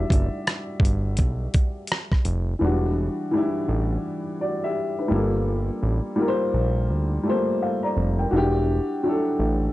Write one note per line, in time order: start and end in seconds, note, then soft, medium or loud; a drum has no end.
0.00 2.61 G3 medium
0.00 2.62 D4 medium
0.00 2.62 E4 medium
0.00 2.58 F#4 medium
0.00 2.62 D5 medium
0.00 2.62 E5 medium
0.10 0.29 F#1 medium
0.10 kick loud
0.10 closed hi-hat medium
0.47 cross-stick loud
0.47 closed hi-hat medium
0.80 1.21 G1 medium
0.80 kick medium
0.85 closed hi-hat medium
1.17 1.48 B1 medium
1.17 kick medium
1.17 closed hi-hat medium
1.54 kick medium
1.54 closed hi-hat medium
1.87 closed hi-hat medium
1.92 cross-stick loud
2.12 kick medium
2.12 cross-stick soft
2.25 2.55 F1 medium
2.25 closed hi-hat medium
2.59 3.09 E1 loud
2.59 3.24 E3 medium
2.59 3.25 G3 medium
2.63 3.26 D4 medium
2.63 3.27 F#4 medium
3.31 4.29 E3 medium
3.31 4.30 G3 medium
3.35 4.31 D4 medium
3.35 4.32 E4 loud
3.68 3.98 A1 medium
4.41 4.62 F#4 medium
4.41 4.61 D5 medium
4.64 4.97 G4 medium
4.64 4.97 E5 medium
4.99 5.32 D4 soft
4.99 5.32 B4 medium
5.08 5.71 G1 loud
5.08 6.06 G3 medium
5.08 6.07 A#3 medium
5.08 6.08 F4 medium
5.14 6.09 A4 medium
5.83 6.01 A1 medium
6.16 7.14 G3 medium
6.16 7.15 A#3 medium
6.16 7.16 F4 medium
6.22 6.28 A#4 medium
6.28 7.20 C5 loud
6.54 6.91 A#1 medium
6.90 7.19 D2 medium
7.23 8.21 G3 medium
7.23 7.33 A3 medium
7.27 8.23 F4 medium
7.27 7.63 C5 loud
7.32 8.25 A#3 medium
7.62 7.83 A4 medium
7.62 7.83 F5 medium
7.83 8.17 D5 medium
7.83 8.17 A#5 medium
7.97 8.26 F1 medium
8.19 8.53 A#4 medium
8.19 8.53 G5 medium
8.31 8.80 E1 loud
8.31 8.97 D4 medium
8.31 8.98 E4 medium
8.31 8.96 F#4 medium
8.37 8.99 G4 loud
9.03 9.73 F#3 medium
9.03 9.73 D4 medium
9.03 9.73 E4 medium
9.09 9.73 A4 medium
9.39 9.69 A1 medium